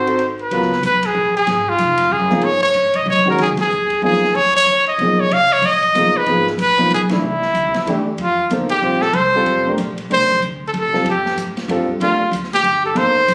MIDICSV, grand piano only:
0, 0, Header, 1, 2, 480
1, 0, Start_track
1, 0, Tempo, 319319
1, 774, Time_signature, 3, 2, 24, 8
1, 20057, End_track
2, 0, Start_track
2, 0, Title_t, "Grand piano"
2, 0, Program_c, 0, 0
2, 104, Note_on_c, 0, 60, 61
2, 109, Note_on_c, 0, 63, 63
2, 113, Note_on_c, 0, 66, 54
2, 120, Note_on_c, 0, 69, 70
2, 274, Note_off_c, 0, 60, 0
2, 276, Note_off_c, 0, 63, 0
2, 279, Note_off_c, 0, 66, 0
2, 282, Note_off_c, 0, 69, 0
2, 785, Note_on_c, 0, 54, 60
2, 792, Note_on_c, 0, 59, 55
2, 801, Note_on_c, 0, 65, 60
2, 807, Note_on_c, 0, 70, 69
2, 1044, Note_off_c, 0, 54, 0
2, 1047, Note_off_c, 0, 59, 0
2, 1052, Note_off_c, 0, 65, 0
2, 1055, Note_off_c, 0, 70, 0
2, 3471, Note_on_c, 0, 53, 80
2, 3475, Note_on_c, 0, 58, 71
2, 3494, Note_on_c, 0, 63, 69
2, 3498, Note_on_c, 0, 68, 80
2, 3638, Note_off_c, 0, 53, 0
2, 3640, Note_off_c, 0, 58, 0
2, 3649, Note_off_c, 0, 63, 0
2, 3652, Note_off_c, 0, 68, 0
2, 4891, Note_on_c, 0, 51, 81
2, 4907, Note_on_c, 0, 56, 69
2, 4918, Note_on_c, 0, 61, 68
2, 4930, Note_on_c, 0, 66, 86
2, 5069, Note_off_c, 0, 51, 0
2, 5077, Note_off_c, 0, 56, 0
2, 5082, Note_off_c, 0, 61, 0
2, 5088, Note_off_c, 0, 66, 0
2, 6055, Note_on_c, 0, 53, 68
2, 6066, Note_on_c, 0, 58, 55
2, 6072, Note_on_c, 0, 63, 63
2, 6085, Note_on_c, 0, 68, 69
2, 6321, Note_off_c, 0, 53, 0
2, 6326, Note_off_c, 0, 58, 0
2, 6330, Note_off_c, 0, 63, 0
2, 6336, Note_off_c, 0, 68, 0
2, 7517, Note_on_c, 0, 53, 64
2, 7524, Note_on_c, 0, 63, 64
2, 7530, Note_on_c, 0, 58, 65
2, 7537, Note_on_c, 0, 68, 79
2, 7773, Note_off_c, 0, 53, 0
2, 7776, Note_off_c, 0, 63, 0
2, 7779, Note_off_c, 0, 58, 0
2, 7783, Note_off_c, 0, 68, 0
2, 8945, Note_on_c, 0, 53, 64
2, 8954, Note_on_c, 0, 58, 58
2, 8962, Note_on_c, 0, 63, 55
2, 8969, Note_on_c, 0, 68, 70
2, 9208, Note_off_c, 0, 53, 0
2, 9212, Note_off_c, 0, 58, 0
2, 9216, Note_off_c, 0, 63, 0
2, 9219, Note_off_c, 0, 68, 0
2, 9430, Note_on_c, 0, 53, 65
2, 9440, Note_on_c, 0, 58, 55
2, 9447, Note_on_c, 0, 63, 55
2, 9454, Note_on_c, 0, 68, 73
2, 9690, Note_off_c, 0, 53, 0
2, 9695, Note_off_c, 0, 58, 0
2, 9698, Note_off_c, 0, 63, 0
2, 9702, Note_off_c, 0, 68, 0
2, 10191, Note_on_c, 0, 53, 81
2, 10202, Note_on_c, 0, 58, 62
2, 10212, Note_on_c, 0, 63, 70
2, 10218, Note_on_c, 0, 71, 80
2, 10362, Note_off_c, 0, 53, 0
2, 10367, Note_off_c, 0, 58, 0
2, 10372, Note_off_c, 0, 63, 0
2, 10375, Note_off_c, 0, 71, 0
2, 10672, Note_on_c, 0, 52, 72
2, 10681, Note_on_c, 0, 57, 59
2, 10690, Note_on_c, 0, 64, 69
2, 10695, Note_on_c, 0, 62, 60
2, 10842, Note_off_c, 0, 52, 0
2, 10846, Note_off_c, 0, 57, 0
2, 10851, Note_off_c, 0, 64, 0
2, 10854, Note_off_c, 0, 62, 0
2, 11825, Note_on_c, 0, 52, 70
2, 11840, Note_on_c, 0, 57, 60
2, 11849, Note_on_c, 0, 62, 58
2, 11863, Note_on_c, 0, 67, 75
2, 12088, Note_off_c, 0, 52, 0
2, 12096, Note_off_c, 0, 57, 0
2, 12100, Note_off_c, 0, 62, 0
2, 12107, Note_off_c, 0, 67, 0
2, 12791, Note_on_c, 0, 58, 61
2, 12805, Note_on_c, 0, 63, 55
2, 12809, Note_on_c, 0, 69, 55
2, 12818, Note_on_c, 0, 72, 67
2, 13052, Note_off_c, 0, 58, 0
2, 13058, Note_off_c, 0, 63, 0
2, 13061, Note_off_c, 0, 69, 0
2, 13065, Note_off_c, 0, 72, 0
2, 13245, Note_on_c, 0, 55, 64
2, 13258, Note_on_c, 0, 60, 63
2, 13268, Note_on_c, 0, 65, 64
2, 13277, Note_on_c, 0, 72, 72
2, 13518, Note_off_c, 0, 55, 0
2, 13525, Note_off_c, 0, 60, 0
2, 13530, Note_off_c, 0, 65, 0
2, 13535, Note_off_c, 0, 72, 0
2, 14056, Note_on_c, 0, 55, 72
2, 14063, Note_on_c, 0, 60, 67
2, 14066, Note_on_c, 0, 65, 67
2, 14082, Note_on_c, 0, 69, 89
2, 14497, Note_off_c, 0, 55, 0
2, 14501, Note_off_c, 0, 60, 0
2, 14502, Note_off_c, 0, 65, 0
2, 14510, Note_off_c, 0, 69, 0
2, 14535, Note_on_c, 0, 62, 58
2, 14538, Note_on_c, 0, 57, 64
2, 14553, Note_on_c, 0, 67, 61
2, 14558, Note_on_c, 0, 70, 68
2, 14694, Note_off_c, 0, 62, 0
2, 14695, Note_off_c, 0, 57, 0
2, 14703, Note_off_c, 0, 67, 0
2, 14705, Note_off_c, 0, 70, 0
2, 15183, Note_on_c, 0, 57, 56
2, 15185, Note_on_c, 0, 62, 49
2, 15192, Note_on_c, 0, 67, 49
2, 15206, Note_on_c, 0, 70, 59
2, 15447, Note_off_c, 0, 57, 0
2, 15448, Note_off_c, 0, 62, 0
2, 15452, Note_off_c, 0, 67, 0
2, 15458, Note_off_c, 0, 70, 0
2, 16423, Note_on_c, 0, 55, 69
2, 16436, Note_on_c, 0, 60, 63
2, 16439, Note_on_c, 0, 65, 62
2, 16449, Note_on_c, 0, 69, 80
2, 16597, Note_off_c, 0, 55, 0
2, 16603, Note_off_c, 0, 60, 0
2, 16604, Note_off_c, 0, 65, 0
2, 16609, Note_off_c, 0, 69, 0
2, 17578, Note_on_c, 0, 55, 71
2, 17590, Note_on_c, 0, 60, 62
2, 17590, Note_on_c, 0, 65, 66
2, 17604, Note_on_c, 0, 69, 75
2, 17842, Note_off_c, 0, 55, 0
2, 17848, Note_off_c, 0, 60, 0
2, 17848, Note_off_c, 0, 65, 0
2, 17855, Note_off_c, 0, 69, 0
2, 18057, Note_on_c, 0, 57, 53
2, 18067, Note_on_c, 0, 62, 45
2, 18078, Note_on_c, 0, 67, 44
2, 18082, Note_on_c, 0, 70, 53
2, 18321, Note_off_c, 0, 57, 0
2, 18326, Note_off_c, 0, 62, 0
2, 18332, Note_off_c, 0, 67, 0
2, 18334, Note_off_c, 0, 70, 0
2, 19466, Note_on_c, 0, 58, 65
2, 19479, Note_on_c, 0, 63, 57
2, 19494, Note_on_c, 0, 69, 55
2, 19498, Note_on_c, 0, 72, 71
2, 19743, Note_off_c, 0, 58, 0
2, 19750, Note_off_c, 0, 63, 0
2, 19757, Note_off_c, 0, 69, 0
2, 19760, Note_off_c, 0, 72, 0
2, 20057, End_track
0, 0, End_of_file